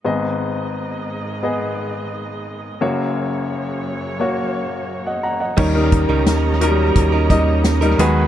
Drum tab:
CC |----------------|----------------|x---------------|
HH |----------------|----------------|--x-x-x-x-x-xxx-|
SD |----------------|----------------|----o-------o---|
BD |----------------|----------------|o-o-----o-o-----|